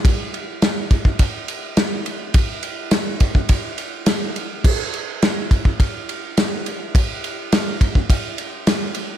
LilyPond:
\new DrumStaff \with { instrumentName = "Drums" } \drummode { \time 4/4 \tempo 4 = 104 <bd cymr>8 cymr8 <cymr sn>8 <bd cymr>16 bd16 <bd cymr>8 cymr8 <cymr sn>8 cymr8 | <bd cymr>8 cymr8 <cymr sn>8 <bd cymr>16 bd16 <bd cymr>8 cymr8 <cymr sn>8 cymr8 | <cymc bd>8 cymr8 <cymr sn>8 <bd cymr>16 bd16 <bd cymr>8 cymr8 <cymr sn>8 cymr8 | <bd cymr>8 cymr8 <cymr sn>8 <bd cymr>16 bd16 <bd cymr>8 cymr8 <cymr sn>8 cymr8 | }